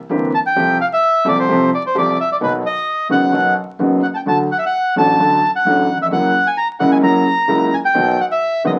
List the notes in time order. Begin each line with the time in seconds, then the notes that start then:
0.09 G1 G2 E3 A#3 C4 G4
0.35 A5
0.46 G5
0.56 C2 C3 F3 A3 C4 G4
0.81 F5
0.93 E5
1.25 C2 C3 F3 A3 C4 G4 D5
1.39 C5
1.49 C2 C3 F3 A3 C4 G4
1.74 D5
1.87 C5
1.95 C2 C3 F3 A3 C4 G4 D5
2.20 E5
2.32 D5
2.41 B1 B2 D#3 F#3 B3 F#4 B4
2.66 D#5
3.09 F#1 F#2 D#3 F#3 B3 F#4 F#5
3.33 B1 B2 D#3 F#3 B3 F#4
3.79 F#1 F#2 D#3 F#3 B3 F#4
4.03 F#5
4.14 G5 A5
4.26 D2 D3 F#3 A3 F#4 A5
4.52 F#5
4.58 E5
4.66 F#5
4.96 A1 A2 D3 F#3 A3 F#4 A5
5.18 D2 D3 F#3 A3 F#4
5.56 F#5
5.65 A1 A2 D3 F#3 A3 F#4
5.95 D#2
6.01 E2 E5
6.05 F2
6.11 F#1 F#2 C#3 F#3 A#3 E4 F#5
6.47 G#5
6.57 A#5
6.80 C#2 C#3 F#3 A#3 E4 F#5
6.92 G#5
7.03 F#1 F#2 C#3 F#3 A#3 E4 A#5
7.48 C#2 C#3 F#3 A#3 E4
7.74 G#5
7.85 G5
7.94 B1 B2 D#3 F#3 B3 F#4
8.21 F#5
8.32 E5
8.64 F#1 F#2 D#3 F#3 B3 F#4 D#5